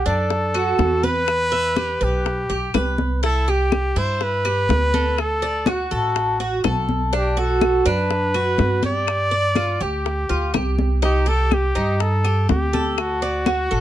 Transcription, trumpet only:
0.06 1.05 A4 loud
1.04 2.05 B4 loud
2.03 3.00 G4 medium
3.24 3.51 A4 loud
3.50 3.99 G4 medium
3.98 4.24 C5 medium
4.22 5.21 B4 loud
5.20 5.70 A4 loud
5.69 6.90 F#4 medium
7.15 7.40 G4 medium
7.39 7.88 A4 medium
7.86 8.84 B4 medium
8.85 9.84 D5 loud
9.82 10.79 G4 medium
11.04 11.30 G4 loud
11.28 11.55 A4 loud
11.53 12.03 G4 medium
12.01 12.49 A4 loud
12.49 13.00 G4 medium
12.99 13.80 F#4 medium

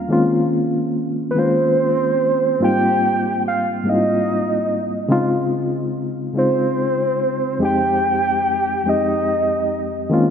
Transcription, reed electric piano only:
0.00 0.12 D#2 medium
0.00 0.12 G3 medium
0.00 0.11 A#3 medium
0.00 0.11 C4 medium
0.00 0.12 C#4 medium
0.00 0.12 F4 medium
0.09 1.07 D#3 medium
0.09 1.07 G#3 medium
0.09 1.08 A#3 medium
0.09 1.08 C4 medium
0.09 1.08 C#4 medium
0.09 1.09 F4 loud
1.35 2.33 D#3 medium
1.35 2.33 G#3 medium
1.35 2.33 A#3 medium
1.35 2.34 C4 medium
1.35 2.34 C#4 medium
1.35 2.34 F4 medium
2.60 3.57 G#2 medium
2.60 3.58 G3 medium
2.60 3.58 A#3 medium
2.60 3.58 C4 medium
2.60 3.59 D#4 medium
2.60 3.59 F4 medium
3.84 4.82 G#2 medium
3.84 4.82 G3 medium
3.84 4.83 A#3 medium
3.84 4.83 C4 medium
3.84 4.84 D#4 medium
3.84 3.93 E4 medium
3.94 4.87 F4 medium
5.09 6.07 C#3 loud
5.09 6.07 G#3 medium
5.09 6.08 C4 medium
5.09 6.08 D#4 medium
5.09 6.09 F4 loud
6.33 7.32 C#3 medium
6.33 7.32 G#3 medium
6.33 7.33 C4 medium
6.33 7.33 D#4 medium
6.33 7.34 F4 medium
7.59 8.57 F2 medium
7.59 8.58 G#3 medium
7.59 8.58 C4 medium
7.59 8.58 D#4 medium
7.59 8.59 G4 medium
8.84 9.82 F2 medium
8.84 9.83 G#3 medium
8.84 9.83 C4 medium
8.84 9.84 D#4 medium
8.88 9.84 G4 medium
10.10 10.30 D#3 loud
10.10 10.30 G#3 medium
10.10 10.30 A#3 medium
10.10 10.30 C4 medium
10.10 10.30 C#4 medium
10.10 10.30 F4 loud

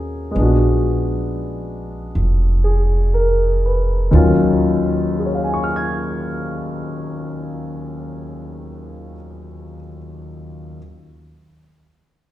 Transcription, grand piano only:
0.00 0.34 A#3 soft
0.00 0.33 B3 soft
0.00 0.35 C#4 soft
0.00 0.35 D#4 soft
0.00 0.35 F#4 soft
0.00 0.36 G#4 soft
0.31 4.09 G#3 soft
0.31 4.11 B3 soft
0.38 4.12 D4 soft
0.42 4.15 F#4 soft
2.64 3.32 G#4 soft
3.14 3.92 A#4 soft
3.66 4.36 B4 soft
4.11 9.11 D#2 soft
4.11 9.11 D#3 soft
4.11 9.12 F#3 soft
4.11 9.14 C#4 soft
4.11 9.14 F4 medium
5.19 9.75 G#4 soft
5.26 9.78 C#5 soft
5.34 9.82 F5 soft
5.44 9.87 G#5 soft
5.54 9.92 C#6 soft
5.64 9.97 F6 soft
5.76 10.03 G#6 soft

